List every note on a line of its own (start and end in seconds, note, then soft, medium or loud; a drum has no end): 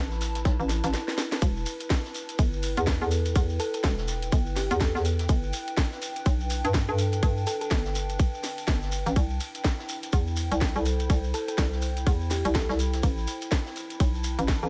0.00 0.44 A1 loud
0.00 6.74 E4 medium
0.00 9.16 B4 medium
0.00 2.34 A5 medium
0.11 snare medium
0.11 shekere soft
0.21 snare loud
0.21 closed hi-hat medium
0.21 open hi-hat medium
0.21 shekere medium
0.35 snare medium
0.35 closed hi-hat medium
0.35 shekere soft
0.45 0.57 B1 loud
0.45 kick loud
0.45 snare loud
0.45 closed hi-hat medium
0.45 shekere soft
0.60 0.82 A1 loud
0.60 shekere soft
0.69 snare soft
0.69 closed hi-hat medium
0.69 open hi-hat loud
0.69 shekere medium
0.84 0.94 A1 medium
0.84 snare loud
0.84 closed hi-hat medium
0.84 shekere soft
0.94 snare medium
0.94 closed hi-hat medium
0.94 shekere soft
1.08 snare medium
1.08 closed hi-hat medium
1.08 shekere soft
1.18 snare medium
1.18 closed hi-hat medium
1.18 open hi-hat medium
1.18 shekere medium
1.32 snare medium
1.32 closed hi-hat medium
1.32 shekere soft
1.42 1.65 E1 loud
1.42 kick loud
1.42 closed hi-hat loud
1.42 closed hi-hat medium
1.42 ride medium
1.42 shekere medium
1.57 shekere soft
1.66 closed hi-hat medium
1.66 open hi-hat loud
1.66 shekere medium
1.80 closed hi-hat medium
1.80 closed hi-hat soft
1.80 shekere soft
1.90 kick loud
1.90 snare loud
1.90 closed hi-hat medium
1.90 ride medium
1.90 shekere medium
2.05 snare medium
2.05 shekere soft
2.12 13.73 G5 loud
2.12 closed hi-hat medium
2.12 open hi-hat medium
2.12 shekere medium
2.29 closed hi-hat medium
2.29 shekere soft
2.39 2.75 G1 loud
2.39 kick loud
2.39 closed hi-hat medium
2.39 ride medium
2.39 shekere medium
2.53 shekere soft
2.63 closed hi-hat medium
2.63 open hi-hat loud
2.63 shekere medium
2.77 2.99 E2 loud
2.77 closed hi-hat medium
2.77 shekere soft
2.87 kick loud
2.87 snare loud
2.87 closed hi-hat medium
2.87 ride medium
2.87 shekere medium
3.01 3.34 E2 loud
3.01 3.11 A4 medium
3.01 shekere soft
3.11 closed hi-hat medium
3.11 open hi-hat loud
3.11 shekere medium
3.26 closed hi-hat medium
3.26 shekere soft
3.36 3.58 E2 loud
3.36 kick loud
3.36 closed hi-hat medium
3.36 ride medium
3.36 shekere medium
3.50 closed hi-hat soft
3.50 shekere soft
3.60 3.69 A4 medium
3.60 closed hi-hat medium
3.60 open hi-hat loud
3.60 shekere medium
3.74 3.80 A4 medium
3.74 closed hi-hat medium
3.74 shekere soft
3.83 4.31 E1 loud
3.83 kick loud
3.83 snare loud
3.83 closed hi-hat medium
3.83 ride medium
3.83 shekere medium
3.98 snare medium
3.98 shekere soft
4.07 snare soft
4.07 closed hi-hat medium
4.07 open hi-hat medium
4.07 shekere medium
4.22 closed hi-hat medium
4.22 shekere soft
4.32 4.69 G1 loud
4.32 kick loud
4.32 closed hi-hat medium
4.32 ride medium
4.32 shekere medium
4.46 shekere soft
4.56 4.70 G4 medium
4.56 snare soft
4.56 open hi-hat loud
4.56 open hi-hat medium
4.56 shekere medium
4.71 4.93 E2 loud
4.71 closed hi-hat medium
4.71 shekere soft
4.80 5.35 A4 medium
4.80 kick loud
4.80 snare loud
4.80 closed hi-hat medium
4.80 ride medium
4.80 shekere medium
4.95 5.28 E2 loud
4.95 snare medium
4.95 shekere soft
5.05 closed hi-hat medium
5.05 open hi-hat loud
5.05 shekere loud
5.19 snare medium
5.19 closed hi-hat medium
5.19 shekere soft
5.28 5.52 G1 loud
5.28 9.97 D4 medium
5.28 kick loud
5.28 closed hi-hat loud
5.28 closed hi-hat medium
5.28 ride medium
5.28 shekere medium
5.43 shekere soft
5.53 closed hi-hat medium
5.53 open hi-hat loud
5.53 shekere loud
5.67 closed hi-hat medium
5.67 closed hi-hat soft
5.67 shekere soft
5.77 kick loud
5.77 snare loud
5.77 closed hi-hat medium
5.77 ride medium
5.77 shekere medium
5.92 snare soft
5.92 shekere soft
6.02 closed hi-hat medium
6.02 open hi-hat loud
6.02 shekere loud
6.16 closed hi-hat medium
6.16 shekere soft
6.25 6.62 B1 loud
6.25 kick loud
6.25 closed hi-hat medium
6.25 ride medium
6.25 shekere medium
6.40 shekere soft
6.50 closed hi-hat medium
6.50 open hi-hat loud
6.50 shekere loud
6.65 6.86 G2 loud
6.65 closed hi-hat medium
6.65 shekere soft
6.74 kick loud
6.74 snare loud
6.74 closed hi-hat medium
6.74 ride medium
6.74 shekere medium
6.88 7.21 G2 loud
6.88 6.98 A4 medium
6.88 shekere soft
6.98 closed hi-hat medium
6.98 open hi-hat loud
6.98 shekere loud
7.13 closed hi-hat medium
7.13 shekere soft
7.23 7.45 G2 loud
7.23 kick loud
7.23 closed hi-hat medium
7.23 ride medium
7.23 shekere medium
7.37 closed hi-hat soft
7.37 shekere soft
7.46 7.56 A4 medium
7.46 closed hi-hat medium
7.46 open hi-hat loud
7.46 shekere medium
7.61 7.68 A4 medium
7.61 closed hi-hat medium
7.61 shekere soft
7.71 8.18 G1 loud
7.71 kick loud
7.71 snare loud
7.71 closed hi-hat medium
7.71 ride medium
7.71 shekere medium
7.85 snare medium
7.85 shekere soft
7.95 snare soft
7.95 closed hi-hat medium
7.95 open hi-hat loud
7.95 shekere medium
8.10 closed hi-hat medium
8.10 shekere soft
8.19 kick loud
8.19 closed hi-hat medium
8.19 ride medium
8.19 shekere medium
8.34 shekere soft
8.43 snare soft
8.43 open hi-hat medium
8.43 open hi-hat loud
8.43 shekere loud
8.58 closed hi-hat medium
8.58 shekere soft
8.67 9.04 G1 loud
8.67 kick loud
8.67 snare loud
8.67 closed hi-hat medium
8.67 ride medium
8.67 shekere medium
8.82 snare medium
8.82 shekere soft
8.91 closed hi-hat medium
8.91 open hi-hat loud
8.91 shekere medium
9.06 9.15 A1 loud
9.06 snare medium
9.06 closed hi-hat medium
9.06 shekere soft
9.16 9.39 C2 loud
9.16 14.69 E4 medium
9.16 kick loud
9.16 closed hi-hat medium
9.16 ride medium
9.16 shekere medium
9.30 shekere soft
9.40 closed hi-hat medium
9.40 open hi-hat loud
9.40 shekere medium
9.55 closed hi-hat medium
9.55 closed hi-hat soft
9.55 shekere soft
9.64 13.03 C5 medium
9.64 kick loud
9.64 snare loud
9.64 closed hi-hat medium
9.64 ride medium
9.64 shekere medium
9.79 snare medium
9.79 shekere soft
9.89 closed hi-hat medium
9.89 open hi-hat medium
9.89 shekere medium
10.03 closed hi-hat medium
10.03 shekere soft
10.12 10.49 E2 loud
10.12 kick loud
10.12 closed hi-hat medium
10.12 ride medium
10.12 shekere medium
10.27 shekere soft
10.36 closed hi-hat medium
10.36 open hi-hat loud
10.36 shekere medium
10.52 10.73 C2 loud
10.52 closed hi-hat medium
10.52 shekere soft
10.61 kick loud
10.61 snare loud
10.61 closed hi-hat medium
10.61 ride medium
10.61 shekere medium
10.75 11.08 C2 loud
10.75 10.85 A4 medium
10.75 shekere soft
10.86 closed hi-hat medium
10.86 open hi-hat medium
10.86 shekere medium
11.00 closed hi-hat medium
11.00 shekere soft
11.10 11.32 C2 loud
11.10 kick loud
11.10 closed hi-hat medium
11.10 ride medium
11.10 shekere medium
11.24 closed hi-hat soft
11.24 shekere soft
11.34 11.43 A4 loud
11.34 closed hi-hat medium
11.34 open hi-hat loud
11.34 shekere medium
11.48 11.55 A4 medium
11.48 closed hi-hat medium
11.48 shekere soft
11.58 12.05 C2 loud
11.58 kick loud
11.58 snare loud
11.58 closed hi-hat medium
11.58 ride medium
11.58 shekere medium
11.72 snare medium
11.72 shekere soft
11.81 snare soft
11.81 closed hi-hat medium
11.81 open hi-hat medium
11.81 shekere medium
11.97 closed hi-hat medium
11.97 shekere soft
12.06 12.43 E2 loud
12.06 kick loud
12.06 closed hi-hat loud
12.06 closed hi-hat medium
12.06 ride medium
12.06 shekere soft
12.21 shekere soft
12.30 12.44 G4 medium
12.30 snare soft
12.30 open hi-hat medium
12.30 open hi-hat loud
12.30 shekere medium
12.45 12.67 C2 loud
12.45 closed hi-hat medium
12.45 shekere soft
12.55 13.09 A4 medium
12.55 kick loud
12.55 snare loud
12.55 closed hi-hat medium
12.55 ride medium
12.55 shekere medium
12.69 13.02 C2 loud
12.69 snare medium
12.69 shekere soft
12.79 closed hi-hat medium
12.79 open hi-hat medium
12.79 shekere loud
12.93 snare medium
12.93 closed hi-hat medium
12.93 shekere soft
13.03 13.26 A1 loud
13.03 kick loud
13.03 closed hi-hat medium
13.03 ride medium
13.03 shekere medium
13.18 shekere soft
13.27 closed hi-hat medium
13.27 open hi-hat loud
13.27 shekere medium
13.42 closed hi-hat medium
13.42 closed hi-hat soft
13.42 shekere soft
13.49 14.69 B4 medium
13.49 14.69 A5 medium
13.49 kick loud
13.49 snare loud
13.49 closed hi-hat medium
13.49 ride medium
13.49 shekere medium
13.66 snare medium
13.66 shekere soft
13.76 closed hi-hat medium
13.76 open hi-hat medium
13.76 shekere medium
13.90 closed hi-hat medium
13.90 shekere soft
14.00 14.36 B1 medium
14.00 kick loud
14.00 closed hi-hat medium
14.00 ride medium
14.00 shekere medium
14.14 shekere soft
14.24 closed hi-hat medium
14.24 open hi-hat loud
14.24 shekere medium
14.39 14.61 A1 loud
14.39 closed hi-hat medium
14.39 shekere soft
14.48 kick loud
14.48 snare loud
14.48 closed hi-hat medium
14.48 ride medium
14.48 shekere medium
14.63 14.69 A1 loud
14.63 14.69 A4 medium
14.63 shekere soft